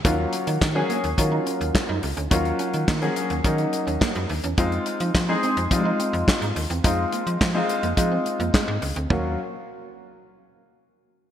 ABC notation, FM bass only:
X:1
M:4/4
L:1/16
Q:1/4=106
K:Ebdor
V:1 name="FM bass" clef=bass
E,,2 z E, E,2 z E,, E,2 z E,, z G,, D,, =D,, | E,,2 z E, E,2 z E,, E,2 z E,, z G,, E,, _F,, | F,,2 z F, F,2 z F,, F,2 z F,, z A,, E,, _F,, | F,,2 z F, F,2 z F,, F,2 z F,, z A,, D,, =D,, |
E,,2 z12 z2 |]